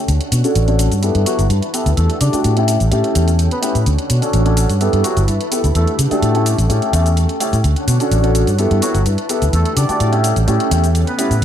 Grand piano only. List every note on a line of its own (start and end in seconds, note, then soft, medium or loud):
0.44 0.65 C#4 medium
0.44 0.65 D4 medium
0.44 0.65 F#4 medium
0.44 0.65 A4 medium
0.68 0.87 C#4 medium
0.68 0.88 D4 medium
0.68 0.88 F#4 medium
0.68 0.88 A4 loud
1.02 1.24 B3 medium
1.02 1.24 E4 medium
1.02 1.24 G4 medium
1.02 1.24 A4 medium
1.26 1.39 B3 medium
1.26 1.39 E4 medium
1.26 1.39 G4 medium
1.26 1.39 A4 medium
1.73 1.86 B3 medium
1.73 1.86 E4 medium
1.73 1.87 G4 medium
1.73 1.87 A4 medium
2.33 2.54 A3 medium
2.33 2.54 D4 medium
2.33 2.54 F#4 medium
2.33 2.54 G4 medium
2.57 2.76 A3 medium
2.57 2.76 C#4 medium
2.57 2.77 E4 medium
2.57 2.77 G4 loud
2.91 3.12 A3 medium
2.91 3.12 C#4 medium
2.91 3.13 E4 medium
2.91 3.13 G4 medium
3.15 3.28 A3 medium
3.15 3.28 C#4 medium
3.15 3.28 E4 medium
3.15 3.28 G4 medium
3.62 3.75 A3 medium
3.62 3.75 C#4 medium
3.62 3.75 E4 medium
3.62 3.75 G4 medium
4.22 4.43 C#4 medium
4.22 4.43 D4 medium
4.22 4.43 F#4 medium
4.22 4.43 A4 medium
4.45 4.65 C#4 medium
4.45 4.65 D4 medium
4.45 4.66 F#4 medium
4.45 4.66 A4 loud
4.81 5.02 B3 medium
4.81 5.02 E4 medium
4.81 5.02 G4 medium
4.81 5.02 A4 medium
5.04 5.17 B3 medium
5.04 5.17 E4 medium
5.04 5.17 G4 medium
5.04 5.17 A4 medium
5.51 5.64 B3 medium
5.51 5.64 E4 medium
5.51 5.65 G4 medium
5.51 5.65 A4 medium
6.11 6.32 A3 medium
6.11 6.32 D4 medium
6.11 6.32 F#4 medium
6.11 6.32 G4 medium
6.34 6.54 A3 medium
6.34 6.54 C#4 medium
6.34 6.55 E4 medium
6.34 6.55 G4 loud
6.69 6.90 A3 medium
6.69 6.91 C#4 medium
6.69 6.91 E4 medium
6.69 6.91 G4 medium
6.93 7.06 A3 medium
6.93 7.06 C#4 medium
6.93 7.06 E4 medium
6.93 7.07 G4 medium
7.40 7.53 A3 medium
7.40 7.53 C#4 medium
7.40 7.54 E4 medium
7.40 7.54 G4 medium
8.00 8.21 C#4 medium
8.00 8.21 D4 medium
8.00 8.21 F#4 medium
8.00 8.21 A4 medium
8.23 8.43 C#4 medium
8.23 8.43 D4 medium
8.23 8.43 F#4 medium
8.23 8.44 A4 loud
8.58 8.79 B3 medium
8.58 8.79 E4 medium
8.58 8.80 G4 medium
8.58 8.80 A4 medium
8.82 8.95 B3 medium
8.82 8.95 E4 medium
8.82 8.95 G4 medium
8.82 8.95 A4 medium
9.29 9.42 B3 medium
9.29 9.42 E4 medium
9.29 9.43 G4 medium
9.29 9.43 A4 medium
9.89 10.10 A3 medium
9.89 10.10 D4 medium
9.89 10.10 F#4 medium
9.89 10.10 G4 medium
10.12 10.32 A3 medium
10.12 10.32 C#4 medium
10.12 10.32 E4 medium
10.12 10.32 G4 loud
10.47 10.68 A3 medium
10.47 10.69 C#4 medium
10.47 10.69 E4 medium
10.47 10.69 G4 medium
10.71 10.84 A3 medium
10.71 10.84 C#4 medium
10.71 10.84 E4 medium
10.71 10.84 G4 medium
11.18 11.31 A3 medium
11.18 11.31 C#4 medium
11.18 11.31 E4 medium
11.18 11.32 G4 medium